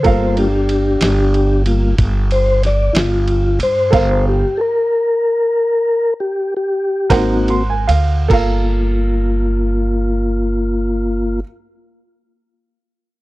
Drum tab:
CC |------------|x-----------|x-----------|
RD |xxxxxxxxxxxx|x--------xxx|------------|
SD |---o----oo--|---------o--|------------|
BD |o-----o-----|o--------o--|o-----------|